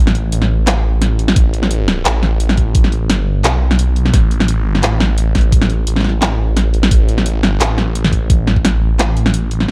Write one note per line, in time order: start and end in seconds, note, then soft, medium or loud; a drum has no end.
0.00 0.31 A1 medium
0.07 snare medium
0.15 closed hi-hat soft
0.32 1.35 A1 loud
0.32 closed hi-hat medium
0.42 snare medium
0.67 clap loud
0.67 snare medium
0.67 closed hi-hat medium
1.02 snare medium
1.02 closed hi-hat medium
1.19 closed hi-hat soft
1.28 snare medium
1.36 2.04 A1 loud
1.36 kick loud
1.36 closed hi-hat medium
1.54 closed hi-hat soft
1.63 snare medium
1.71 closed hi-hat medium
1.88 snare medium
2.05 3.08 A1 loud
2.05 clap loud
2.05 closed hi-hat medium
2.23 snare medium
2.40 closed hi-hat medium
2.49 snare medium
2.57 kick medium
2.57 closed hi-hat soft
2.75 kick loud
2.75 closed hi-hat medium
2.84 snare soft
2.92 closed hi-hat soft
3.09 3.43 G1 loud
3.09 snare medium
3.09 closed hi-hat medium
3.44 4.12 B1 medium
3.44 clap loud
3.44 snare soft
3.44 closed hi-hat medium
3.71 snare medium
3.79 closed hi-hat medium
3.96 closed hi-hat soft
4.06 snare medium
4.13 4.61 A1 medium
4.13 kick loud
4.13 snare soft
4.13 closed hi-hat medium
4.31 closed hi-hat soft
4.40 snare medium
4.48 closed hi-hat medium
4.61 4.82 G#1 medium
4.75 snare soft
4.83 5.86 A1 medium
4.83 clap loud
4.83 closed hi-hat medium
5.00 snare medium
5.18 closed hi-hat medium
5.35 kick medium
5.35 snare soft
5.35 closed hi-hat soft
5.38 closed hi-hat soft
5.41 closed hi-hat soft
5.52 kick loud
5.52 closed hi-hat medium
5.62 snare medium
5.70 closed hi-hat soft
5.87 6.90 A1 loud
5.87 closed hi-hat medium
5.96 snare soft
6.00 snare soft
6.04 snare soft
6.09 snare soft
6.22 clap loud
6.22 snare medium
6.22 closed hi-hat medium
6.57 snare medium
6.57 closed hi-hat medium
6.74 closed hi-hat soft
6.83 snare medium
6.91 7.39 A1 medium
6.91 kick loud
6.91 closed hi-hat medium
7.09 closed hi-hat soft
7.18 snare medium
7.26 closed hi-hat medium
7.39 7.59 G#1 medium
7.43 snare medium
7.60 8.63 A1 loud
7.60 clap loud
7.60 closed hi-hat medium
7.78 snare medium
7.95 closed hi-hat medium
8.04 snare medium
8.12 kick medium
8.12 closed hi-hat soft
8.30 kick loud
8.30 closed hi-hat medium
8.47 snare medium
8.56 kick medium
8.64 9.67 A1 loud
8.64 snare medium
8.64 closed hi-hat medium
8.99 clap loud
8.99 snare medium
8.99 closed hi-hat medium
9.17 closed hi-hat soft
9.26 snare medium
9.34 closed hi-hat medium
9.51 closed hi-hat soft
9.60 snare medium